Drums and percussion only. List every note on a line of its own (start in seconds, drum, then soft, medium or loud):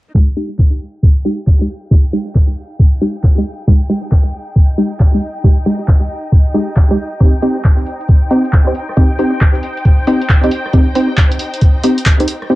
0.14 kick loud
0.59 kick loud
0.59 clap loud
1.03 kick loud
1.47 kick loud
1.47 clap loud
1.91 kick loud
2.35 kick loud
2.35 clap loud
2.79 kick loud
3.23 kick loud
3.23 clap loud
3.67 kick loud
4.11 kick loud
4.11 clap loud
4.56 kick loud
5.00 kick loud
5.00 clap loud
5.44 kick loud
5.88 kick loud
5.88 clap loud
6.32 kick loud
6.76 kick loud
6.76 clap loud
7.20 kick loud
7.20 closed hi-hat medium
7.42 open hi-hat loud
7.64 kick loud
7.64 clap loud
7.79 closed hi-hat medium
7.86 open hi-hat loud
8.01 closed hi-hat medium
8.08 kick loud
8.08 closed hi-hat medium
8.31 open hi-hat medium
8.45 closed hi-hat medium
8.53 kick loud
8.53 clap loud
8.67 closed hi-hat soft
8.75 open hi-hat loud
8.89 cross-stick soft
8.97 kick loud
8.97 closed hi-hat medium
9.19 open hi-hat loud
9.41 kick loud
9.41 clap loud
9.55 closed hi-hat medium
9.63 open hi-hat loud
9.77 closed hi-hat medium
9.85 kick loud
9.85 closed hi-hat medium
10.07 open hi-hat loud
10.21 closed hi-hat medium
10.29 kick loud
10.29 clap loud
10.44 closed hi-hat soft
10.51 open hi-hat loud
10.66 cross-stick soft
10.73 kick loud
10.73 closed hi-hat medium
10.95 open hi-hat loud
11.17 kick loud
11.17 clap loud
11.32 closed hi-hat medium
11.39 open hi-hat loud
11.54 closed hi-hat medium
11.61 kick loud
11.61 closed hi-hat medium
11.83 open hi-hat loud
11.98 closed hi-hat medium
12.06 kick loud
12.06 clap loud
12.20 closed hi-hat medium
12.28 open hi-hat loud
12.42 cross-stick soft